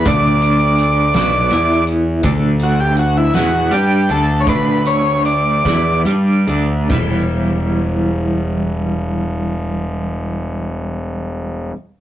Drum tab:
CC |------|------|------|x-----|
HH |xxxxxx|xxxxxx|xxxxxx|------|
SD |---o--|---o--|---o--|------|
BD |o-----|o-----|o--o--|o-----|

CC |------|
HH |------|
SD |------|
BD |------|